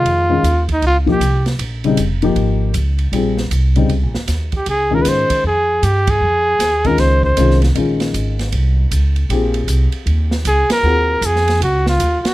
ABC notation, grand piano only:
X:1
M:4/4
L:1/8
Q:"Swing" 1/4=156
K:Bbdor
V:1 name="Grand piano"
[E,A,Fd] [E,A,DF] z3 [F,B,EG] z2 | z [D,G,CE] z [F,B,EG]3 z2 | [G,CFA] z2 [D,G,CE] z4 | z [E,A,DF]3 z4 |
z3 [E,A,DF]3 [E,A,DF] z | [E,A,DF]4- [E,A,DF] z3 | [CFGA]4- [CFGA] z3 | [K:Ebdor] [CFGA]4- [CFGA] z3 |]